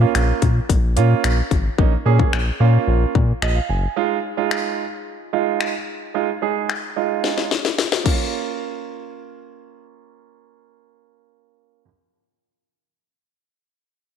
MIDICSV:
0, 0, Header, 1, 4, 480
1, 0, Start_track
1, 0, Key_signature, -5, "minor"
1, 0, Tempo, 545455
1, 1571, Time_signature, 4, 2, 24, 8
1, 12467, End_track
2, 0, Start_track
2, 0, Title_t, "Grand piano"
2, 0, Program_c, 0, 0
2, 8, Note_on_c, 0, 58, 84
2, 10, Note_on_c, 0, 61, 75
2, 12, Note_on_c, 0, 65, 89
2, 409, Note_off_c, 0, 58, 0
2, 410, Note_off_c, 0, 61, 0
2, 412, Note_off_c, 0, 65, 0
2, 848, Note_on_c, 0, 58, 83
2, 851, Note_on_c, 0, 61, 77
2, 852, Note_on_c, 0, 65, 91
2, 1192, Note_off_c, 0, 58, 0
2, 1194, Note_off_c, 0, 61, 0
2, 1194, Note_off_c, 0, 65, 0
2, 1569, Note_on_c, 0, 58, 84
2, 1572, Note_on_c, 0, 61, 82
2, 1573, Note_on_c, 0, 63, 94
2, 1684, Note_off_c, 0, 58, 0
2, 1686, Note_off_c, 0, 61, 0
2, 1686, Note_off_c, 0, 63, 0
2, 1809, Note_on_c, 0, 58, 82
2, 1811, Note_on_c, 0, 61, 77
2, 1814, Note_on_c, 0, 68, 93
2, 2038, Note_off_c, 0, 58, 0
2, 2039, Note_off_c, 0, 61, 0
2, 2041, Note_off_c, 0, 68, 0
2, 2288, Note_on_c, 0, 58, 82
2, 2291, Note_on_c, 0, 61, 74
2, 2293, Note_on_c, 0, 65, 91
2, 2747, Note_off_c, 0, 58, 0
2, 2748, Note_off_c, 0, 61, 0
2, 2749, Note_off_c, 0, 65, 0
2, 3011, Note_on_c, 0, 75, 75
2, 3122, Note_off_c, 0, 75, 0
2, 3131, Note_on_c, 0, 77, 65
2, 3242, Note_off_c, 0, 77, 0
2, 3252, Note_on_c, 0, 80, 63
2, 3475, Note_off_c, 0, 80, 0
2, 3488, Note_on_c, 0, 56, 84
2, 3491, Note_on_c, 0, 63, 77
2, 3493, Note_on_c, 0, 65, 95
2, 3661, Note_off_c, 0, 56, 0
2, 3662, Note_off_c, 0, 63, 0
2, 3663, Note_off_c, 0, 65, 0
2, 3848, Note_on_c, 0, 56, 79
2, 3850, Note_on_c, 0, 63, 77
2, 3853, Note_on_c, 0, 65, 91
2, 4249, Note_off_c, 0, 56, 0
2, 4251, Note_off_c, 0, 63, 0
2, 4252, Note_off_c, 0, 65, 0
2, 4689, Note_on_c, 0, 56, 81
2, 4691, Note_on_c, 0, 63, 76
2, 4693, Note_on_c, 0, 65, 92
2, 5033, Note_off_c, 0, 56, 0
2, 5034, Note_off_c, 0, 63, 0
2, 5035, Note_off_c, 0, 65, 0
2, 5406, Note_on_c, 0, 56, 84
2, 5409, Note_on_c, 0, 63, 75
2, 5411, Note_on_c, 0, 65, 89
2, 5523, Note_off_c, 0, 56, 0
2, 5524, Note_off_c, 0, 63, 0
2, 5525, Note_off_c, 0, 65, 0
2, 5648, Note_on_c, 0, 56, 80
2, 5651, Note_on_c, 0, 63, 74
2, 5653, Note_on_c, 0, 68, 91
2, 5878, Note_off_c, 0, 56, 0
2, 5879, Note_off_c, 0, 63, 0
2, 5880, Note_off_c, 0, 68, 0
2, 6127, Note_on_c, 0, 56, 77
2, 6129, Note_on_c, 0, 63, 73
2, 6132, Note_on_c, 0, 65, 86
2, 6586, Note_off_c, 0, 56, 0
2, 6587, Note_off_c, 0, 63, 0
2, 6588, Note_off_c, 0, 65, 0
2, 7074, Note_on_c, 0, 58, 71
2, 7091, Note_on_c, 0, 61, 67
2, 7109, Note_on_c, 0, 65, 77
2, 10382, Note_off_c, 0, 58, 0
2, 10399, Note_off_c, 0, 61, 0
2, 10417, Note_off_c, 0, 65, 0
2, 12467, End_track
3, 0, Start_track
3, 0, Title_t, "Analog synth bass"
3, 0, Program_c, 1, 38
3, 131, Note_on_c, 1, 34, 101
3, 287, Note_off_c, 1, 34, 0
3, 372, Note_on_c, 1, 46, 92
3, 528, Note_off_c, 1, 46, 0
3, 611, Note_on_c, 1, 34, 107
3, 851, Note_on_c, 1, 46, 97
3, 865, Note_off_c, 1, 34, 0
3, 1007, Note_off_c, 1, 46, 0
3, 1091, Note_on_c, 1, 34, 89
3, 1247, Note_off_c, 1, 34, 0
3, 1331, Note_on_c, 1, 32, 91
3, 1486, Note_off_c, 1, 32, 0
3, 1570, Note_on_c, 1, 34, 104
3, 1726, Note_off_c, 1, 34, 0
3, 1811, Note_on_c, 1, 46, 96
3, 1967, Note_off_c, 1, 46, 0
3, 2050, Note_on_c, 1, 34, 100
3, 2206, Note_off_c, 1, 34, 0
3, 2291, Note_on_c, 1, 46, 104
3, 2447, Note_off_c, 1, 46, 0
3, 2530, Note_on_c, 1, 34, 112
3, 2686, Note_off_c, 1, 34, 0
3, 2773, Note_on_c, 1, 46, 96
3, 2928, Note_off_c, 1, 46, 0
3, 3010, Note_on_c, 1, 34, 94
3, 3166, Note_off_c, 1, 34, 0
3, 3251, Note_on_c, 1, 30, 88
3, 3406, Note_off_c, 1, 30, 0
3, 12467, End_track
4, 0, Start_track
4, 0, Title_t, "Drums"
4, 132, Note_on_c, 9, 26, 96
4, 132, Note_on_c, 9, 42, 85
4, 220, Note_off_c, 9, 26, 0
4, 220, Note_off_c, 9, 42, 0
4, 370, Note_on_c, 9, 42, 62
4, 372, Note_on_c, 9, 36, 87
4, 458, Note_off_c, 9, 42, 0
4, 460, Note_off_c, 9, 36, 0
4, 611, Note_on_c, 9, 36, 87
4, 613, Note_on_c, 9, 42, 92
4, 699, Note_off_c, 9, 36, 0
4, 701, Note_off_c, 9, 42, 0
4, 850, Note_on_c, 9, 42, 80
4, 938, Note_off_c, 9, 42, 0
4, 1093, Note_on_c, 9, 26, 102
4, 1093, Note_on_c, 9, 42, 80
4, 1181, Note_off_c, 9, 26, 0
4, 1181, Note_off_c, 9, 42, 0
4, 1331, Note_on_c, 9, 36, 88
4, 1331, Note_on_c, 9, 42, 59
4, 1419, Note_off_c, 9, 36, 0
4, 1419, Note_off_c, 9, 42, 0
4, 1570, Note_on_c, 9, 36, 109
4, 1658, Note_off_c, 9, 36, 0
4, 1932, Note_on_c, 9, 36, 84
4, 2020, Note_off_c, 9, 36, 0
4, 2052, Note_on_c, 9, 26, 98
4, 2140, Note_off_c, 9, 26, 0
4, 2773, Note_on_c, 9, 36, 87
4, 2861, Note_off_c, 9, 36, 0
4, 3013, Note_on_c, 9, 26, 98
4, 3101, Note_off_c, 9, 26, 0
4, 3971, Note_on_c, 9, 26, 101
4, 4059, Note_off_c, 9, 26, 0
4, 4933, Note_on_c, 9, 26, 97
4, 5021, Note_off_c, 9, 26, 0
4, 5892, Note_on_c, 9, 26, 92
4, 5980, Note_off_c, 9, 26, 0
4, 6371, Note_on_c, 9, 38, 51
4, 6459, Note_off_c, 9, 38, 0
4, 6491, Note_on_c, 9, 38, 47
4, 6579, Note_off_c, 9, 38, 0
4, 6611, Note_on_c, 9, 38, 65
4, 6699, Note_off_c, 9, 38, 0
4, 6731, Note_on_c, 9, 38, 62
4, 6819, Note_off_c, 9, 38, 0
4, 6851, Note_on_c, 9, 38, 74
4, 6939, Note_off_c, 9, 38, 0
4, 6971, Note_on_c, 9, 38, 71
4, 7059, Note_off_c, 9, 38, 0
4, 7090, Note_on_c, 9, 36, 99
4, 7090, Note_on_c, 9, 49, 74
4, 7178, Note_off_c, 9, 36, 0
4, 7178, Note_off_c, 9, 49, 0
4, 12467, End_track
0, 0, End_of_file